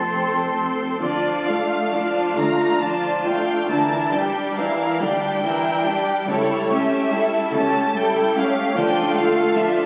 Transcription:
0.00 0.85 F1 soft
0.00 0.85 F2 soft
0.00 0.24 A3 soft
0.00 0.65 C4 soft
0.00 1.00 C4 soft
0.00 0.99 A4 soft
0.00 0.65 A5 soft
0.00 0.66 C6 soft
0.00 1.01 C6 soft
1.01 2.21 D2 soft
1.01 2.21 D3 soft
1.01 1.44 F3 soft
1.01 1.44 D4 soft
1.01 1.45 F4 soft
1.01 1.44 D5 soft
1.01 1.45 D5 medium
1.46 1.93 A3 soft
1.46 1.93 D4 soft
1.46 1.93 F4 soft
1.46 2.38 F5 medium
1.46 1.93 F5 soft
1.93 2.39 F3 soft
1.93 2.39 D4 soft
1.93 2.38 F4 soft
1.93 2.38 D5 soft
2.37 3.53 D2 soft
2.37 3.53 D3 medium
2.37 2.82 A3 soft
2.37 2.83 D4 soft
2.37 2.83 F4 soft
2.37 2.83 F5 soft
2.37 2.83 A#5 medium
2.82 3.24 F3 soft
2.82 3.23 D4 soft
2.82 3.24 F4 soft
2.82 3.23 D5 soft
2.82 3.27 A5 medium
3.24 3.70 A3 soft
3.24 3.69 D4 soft
3.24 3.70 F4 soft
3.24 3.70 F5 soft
3.24 3.69 G5 medium
3.69 4.84 D2 medium
3.69 4.84 D3 medium
3.69 4.11 E3 soft
3.69 4.10 D4 soft
3.69 4.10 E4 soft
3.69 4.11 A#4 soft
3.69 4.12 A5 medium
4.12 4.57 G3 soft
4.12 4.57 D4 soft
4.12 4.58 G4 soft
4.12 4.58 D5 soft
4.12 4.58 G5 medium
4.57 5.02 E3 soft
4.57 5.02 D4 soft
4.57 5.01 E4 soft
4.57 5.02 A#4 soft
4.57 5.01 F5 medium
5.01 6.12 D2 medium
5.01 6.12 D3 medium
5.01 5.45 G3 soft
5.01 5.45 D4 soft
5.01 5.45 G4 soft
5.01 5.45 D5 soft
5.01 6.29 G5 medium
5.44 5.84 E3 soft
5.44 5.84 D4 soft
5.44 5.84 E4 soft
5.44 5.84 A#4 soft
5.86 6.28 G3 soft
5.86 6.29 D4 soft
5.86 6.29 G4 soft
5.86 6.29 D5 soft
6.28 7.38 C#2 medium
6.28 7.37 C#3 medium
6.28 6.68 G3 soft
6.28 6.68 E4 soft
6.28 6.67 A4 soft
6.28 6.70 C#5 medium
6.71 7.13 A3 soft
6.71 7.13 C#4 soft
6.71 7.12 G4 soft
6.71 7.13 C#5 soft
6.71 7.55 E5 medium
7.12 7.54 G3 soft
7.12 7.54 E4 soft
7.12 7.54 A4 soft
7.53 8.61 C#2 medium
7.53 8.60 C#3 medium
7.53 7.95 A3 soft
7.53 7.95 C#4 soft
7.53 7.96 G4 soft
7.53 7.96 C#5 soft
7.53 7.95 A5 medium
7.96 8.34 G3 soft
7.96 8.34 E4 soft
7.96 8.34 A4 soft
7.96 8.37 G5 medium
8.36 8.77 A3 soft
8.36 8.77 C#4 soft
8.36 8.77 G4 soft
8.36 8.77 C#5 soft
8.36 8.78 F5 medium
8.76 9.82 D2 medium
8.76 9.82 D3 medium
8.76 9.14 F3 soft
8.76 9.14 D4 medium
8.76 9.14 F4 soft
8.76 9.14 A4 medium
8.76 9.17 G5 medium
9.16 9.57 A3 soft
9.16 9.57 F4 soft
9.16 9.56 F4 soft
9.16 9.56 A4 soft
9.16 9.57 F5 medium
9.55 9.86 F3 soft
9.55 9.86 D4 soft
9.55 9.86 F4 soft
9.55 9.86 A4 soft
9.55 9.86 E5 medium

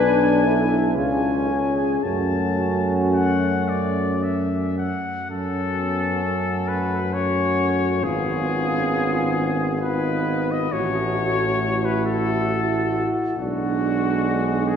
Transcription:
0.00 0.96 B1 medium
0.00 0.44 D4 medium
0.00 0.97 D4 medium
0.00 0.45 B4 loud
0.00 0.90 G#5 medium
0.44 0.95 E4 medium
0.44 0.95 A4 medium
0.94 2.03 C#2 medium
0.94 2.04 C#4 medium
0.94 1.48 F4 medium
0.94 1.05 G#4 medium
0.94 2.05 G#5 medium
1.05 1.14 A4 medium
1.13 1.23 G#4 medium
1.23 1.33 A4 medium
1.33 1.42 G#4 medium
1.42 1.52 A4 medium
1.48 2.04 C#4 medium
1.52 1.62 G#4 medium
1.61 1.71 A4 medium
1.72 2.04 G#4 medium
2.03 4.91 F#2 medium
2.03 4.79 A3 medium
2.03 4.92 C#4 medium
2.03 4.21 F#4 medium
2.03 3.04 A5 medium
3.14 3.70 F#5 medium
3.69 4.25 D5 medium
4.23 4.78 E5 medium
4.78 5.30 F#5 medium
5.30 8.05 F#2 medium
5.30 7.10 C#4 medium
5.30 5.75 C#4 soft
5.30 7.10 F#4 soft
5.30 6.70 A4 medium
5.79 6.24 B3 medium
6.24 8.05 A3 medium
6.68 7.15 B4 medium
7.14 8.07 C#4 medium
7.14 8.02 F#4 medium
7.14 8.05 C#5 medium
8.04 10.71 G#1 medium
8.04 8.48 B3 medium
8.04 9.81 B3 medium
8.04 9.80 F4 medium
8.04 9.81 G#4 medium
8.47 9.81 C#4 medium
9.81 10.71 B3 medium
9.81 10.71 D#4 medium
9.81 10.70 F4 medium
9.81 10.53 B4 medium
10.52 10.74 D#5 medium
10.71 13.06 A1 medium
10.71 13.06 A3 medium
10.71 11.16 C#4 medium
10.71 13.37 F#4 medium
10.71 11.86 C#5 medium
11.17 11.62 F#4 medium
11.63 13.34 E4 medium
11.85 12.05 B4 medium
12.06 13.08 A4 medium
13.37 14.76 B1 medium
13.37 14.76 G#3 medium
13.37 14.76 D4 medium
13.37 14.70 F#4 medium
14.68 14.76 G#4 medium

